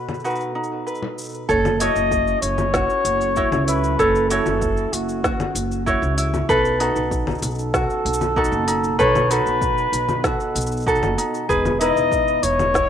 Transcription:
Already playing: ambient pad B2 B3 A4 D#5, ukulele D#4 F#4 A4 B4, flugelhorn B4
0.09 low conga, cabasa
0.14 cabasa
0.20 cabasa
0.24 ukulele D#4 F#4 B4, cabasa
0.30 cabasa
0.35 cabasa
0.40 cabasa
0.55 ukulele D#4
0.64 cabasa
0.87 ukulele B4, cabasa
0.95 cabasa
1.02 low conga
1.18 cabasa
1.21 cabasa
1.24 cabasa
1.26 cabasa
1.29 cabasa
1.32 cabasa
1.34 cabasa
1.49 upright bass F#1, ambient pad F#3, ukulele A4 C#5, kick, cabasa
1.65 low conga, cabasa
1.80 ambient pad C#4, ukulele E4 F#4 C#5, flugelhorn D#5, open hi-hat, cabasa
1.95 upright bass F#1, cabasa
2.08 ambient pad E4, kick, cabasa
2.27 cabasa
2.42 upright bass F#1, flugelhorn C#5, open hi-hat, cabasa
2.58 low conga, cabasa
2.74 ukulele F#4, kick, snare, cabasa
2.90 cabasa
3.05 upright bass F#1, open hi-hat, cabasa
3.21 cabasa
3.36 ukulele E4 F#4 C#5, kick, cabasa
3.52 upright bass C#2, low conga, cabasa
3.68 ukulele E4, flugelhorn B4, open hi-hat, cabasa
3.84 cabasa
3.99 upright bass F#1, ukulele A4 C#5, kick, cabasa
4.15 cabasa
4.30 ukulele E4 F#4 C#5, flugelhorn A4, open hi-hat, cabasa
4.46 upright bass F#1, low conga, cabasa
4.62 kick, cabasa
4.77 cabasa
4.93 upright bass F#1, flugelhorn F#4, open hi-hat, cabasa
5.09 cabasa
5.24 ukulele F#4, kick, snare, cabasa
5.40 low conga, cabasa
5.55 upright bass F#1, open hi-hat, cabasa
5.72 cabasa
5.86 ukulele E4 F#4 C#5, kick, cabasa
6.02 upright bass C#2, cabasa
6.18 ukulele E4, open hi-hat, cabasa
6.34 low conga, cabasa
6.48 upright bass B1, ambient pad B2, ukulele A4 B4, kick, cabasa
6.65 cabasa
6.80 ambient pad B3, ukulele D#4 F#4 A4, open hi-hat
6.96 upright bass B1, cabasa
7.11 kick, cabasa
7.27 low conga, cabasa
7.31 cabasa
7.35 cabasa
7.38 cabasa
7.42 upright bass B1, flugelhorn A4, open hi-hat, cabasa
7.51 cabasa
7.55 cabasa
7.59 cabasa
7.74 ukulele F#4, kick, snare, cabasa
7.90 cabasa
7.97 ambient pad D#5
8.05 upright bass B1, open hi-hat
8.13 cabasa
8.21 low conga, cabasa
8.36 ukulele D#4 F#4 A4, kick
8.44 cabasa
8.52 upright bass F#1, cabasa
8.68 ukulele D#4, open hi-hat, cabasa
8.84 cabasa
8.99 upright bass B1, ukulele A4 B4, flugelhorn C#5, kick, cabasa
9.15 low conga, cabasa
9.30 ukulele D#4 F#4 A4, flugelhorn B4, open hi-hat, cabasa
9.46 upright bass B1, cabasa
9.61 kick, cabasa
9.78 cabasa
9.93 upright bass B1, open hi-hat, cabasa
10.09 low conga, cabasa
10.24 ukulele F#4, flugelhorn A4, kick, snare, cabasa
10.40 cabasa
10.55 upright bass B1, open hi-hat, cabasa
10.61 cabasa
10.67 cabasa
10.72 cabasa
10.77 cabasa
10.80 cabasa
10.82 cabasa
10.87 ukulele D#4 F#4 A4, kick, cabasa
10.95 cabasa
11.02 upright bass F#1, low conga, cabasa
11.18 ukulele D#4, open hi-hat, cabasa
11.35 cabasa
11.49 upright bass E1, ambient pad E3, ukulele G#4 B4, kick, cabasa
11.65 low conga, cabasa
11.80 ukulele D#4 E4 B4, flugelhorn D#5, open hi-hat, cabasa
11.96 upright bass E1, cabasa
12.12 kick, cabasa
12.28 cabasa
12.41 upright bass E1, ambient pad G#4, flugelhorn C#5, open hi-hat, cabasa
12.59 low conga, cabasa
12.74 ukulele E4, kick, snare, cabasa

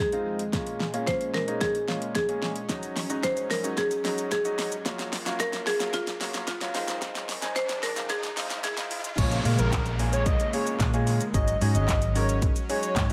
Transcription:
Already playing: supersaw synth F2 D#3 G#3
0.00 marimba G#4
0.12 grand piano G#3 C4 D#4 F4, closed hi-hat
0.39 closed hi-hat
0.53 supersaw synth A#2 C#4, grand piano G#3 A#3 C#4 F4, kick, snare, closed hi-hat, riser
0.67 closed hi-hat
0.80 snare
0.93 grand piano G#3 A#3 C#4 F4, closed hi-hat
1.07 marimba C5, kick, snare, closed hi-hat
1.21 closed hi-hat
1.34 marimba A#4, snare
1.47 grand piano G#3 A#3 C#4 D#4, closed hi-hat
1.61 marimba G#4, kick, snare, closed hi-hat
1.75 closed hi-hat
1.88 grand piano G#3 A#3 C#4 F4, snare
2.02 closed hi-hat
2.15 marimba G#4, kick, snare, closed hi-hat
2.29 grand piano G#3 A#3 C#4 G#4, closed hi-hat
2.42 snare
2.56 closed hi-hat
2.69 supersaw synth G#2 F#3, grand piano F#3 G#3 C#4 D#4, kick, snare, closed hi-hat, shaker
2.83 closed hi-hat, shaker
2.96 snare, open hi-hat, shaker
3.10 grand piano F#3 G#3 C#4 D#4, closed hi-hat, shaker
3.23 marimba C5, kick, snare, closed hi-hat, shaker
3.37 closed hi-hat, shaker
3.50 marimba A#4, snare, open hi-hat, shaker
3.64 grand piano F#3 G#3 C#4 D#4, closed hi-hat, shaker
3.77 marimba G#4, kick, snare, closed hi-hat, shaker
3.91 closed hi-hat, shaker
4.04 grand piano F#3 G#3 C#4 D#4, snare, open hi-hat, shaker
4.18 closed hi-hat, shaker
4.31 marimba G#4, kick, snare, closed hi-hat, shaker
4.45 grand piano F#3 G#3 C#4 D#4, closed hi-hat, shaker
4.58 snare, open hi-hat, shaker
4.72 closed hi-hat, shaker
4.85 supersaw synth F#2 A#3 F4, grand piano F#3 A#3 C#4 F4, kick, snare, closed hi-hat, shaker
4.99 snare, closed hi-hat, shaker
5.13 snare, open hi-hat, shaker
5.26 grand piano F#3 A#3 C#4 F4, snare, closed hi-hat, shaker
5.40 marimba A#4, kick, snare, closed hi-hat, shaker
5.53 snare, closed hi-hat, shaker
5.67 marimba G#4, snare, open hi-hat, shaker
5.80 grand piano F#3 A#3 C#4 F4, snare, closed hi-hat, shaker
5.93 marimba F4, kick, snare, closed hi-hat, shaker
6.07 snare, closed hi-hat, shaker
6.20 grand piano F#3 A#3 C#4 F4, snare, open hi-hat, shaker
6.34 snare, closed hi-hat, shaker
6.47 marimba F4, kick, snare, closed hi-hat, shaker
6.61 grand piano F#3 A#3 C#4 F4, snare, closed hi-hat, shaker
6.74 supersaw synth F2 D#3 G#3, grand piano G#3 C4 D#4 F4, snare, open hi-hat, shaker
6.88 snare, closed hi-hat, shaker
7.02 kick, snare, closed hi-hat, shaker
7.15 snare, closed hi-hat, shaker
7.29 snare, open hi-hat, shaker
7.42 grand piano G#3 C4 D#4 G#4, snare, closed hi-hat, shaker
7.56 marimba C5, kick, snare, closed hi-hat, shaker
7.69 snare, closed hi-hat, shaker
7.83 marimba A#4, snare, open hi-hat, shaker
7.96 grand piano G#3 C4 D#4 F4, snare, closed hi-hat, shaker
8.09 marimba G#4, kick, snare, closed hi-hat, shaker
8.23 snare, closed hi-hat, shaker
8.37 grand piano G#3 C4 D#4 F4, snare, open hi-hat, shaker
8.50 snare, closed hi-hat, shaker
8.64 marimba G#4, snare, closed hi-hat, shaker
8.77 grand piano G#3 C4 D#4 F4, snare, closed hi-hat, shaker
8.91 open hi-hat, shaker
9.04 closed hi-hat, shaker
9.18 fingered electric bass A#1, supersaw synth C#3 G#3 A#3, grand piano G#3 A#3 C#4 F4 G#4, digital synth lead C#5, kick, closed hi-hat, crash, downlifter, shaker
9.31 closed hi-hat, shaker
9.45 fingered electric bass A#2, grand piano G#3 A#3 C#4 F4 A#4, open hi-hat, shaker
9.59 fingered electric bass A#1, digital synth lead A#4, closed hi-hat, shaker
9.72 digital synth lead A#4, kick, snare, clap, closed hi-hat, shaker
9.86 closed hi-hat, shaker
9.99 grand piano G#3 A#3 C#4 F4 G#4, open hi-hat, shaker
10.13 digital synth lead C#5, closed hi-hat, shaker
10.26 digital synth lead D#5, kick, closed hi-hat, shaker
10.40 closed hi-hat, shaker
10.53 grand piano G#3 A#3 C#4 F4 G#4, digital synth lead C#5, open hi-hat, shaker
10.67 closed hi-hat, shaker
10.80 fingered electric bass A#2, kick, snare, clap, closed hi-hat, shaker
10.94 grand piano G#3 A#3 C#4 F4 G#4, closed hi-hat, shaker
11.07 open hi-hat, shaker
11.21 closed hi-hat, shaker
11.34 fingered electric bass G#1, supersaw synth F#3 C#4, grand piano G#3 C#4 D#4 F#4 G#4, digital synth lead D#5, kick, closed hi-hat, shaker
11.48 closed hi-hat, shaker
11.61 fingered electric bass G#2, grand piano G#3 C#4 D#4 F#4 G#4, open hi-hat, shaker
11.75 fingered electric bass G#1, digital synth lead D#5, closed hi-hat, shaker
11.89 kick, snare, clap, closed hi-hat, shaker
12.02 closed hi-hat, shaker
12.15 grand piano G#3 C#4 D#4 F#4 A#4, digital synth lead C#5, open hi-hat, shaker
12.29 closed hi-hat, shaker
12.42 kick, closed hi-hat, shaker
12.56 closed hi-hat, shaker
12.69 grand piano G#3 C#4 D#4 F#4 G#4, digital synth lead C#5, open hi-hat, shaker
12.83 closed hi-hat, shaker
12.96 fingered electric bass G#2, kick, snare, clap, closed hi-hat, shaker
13.10 closed hi-hat, shaker

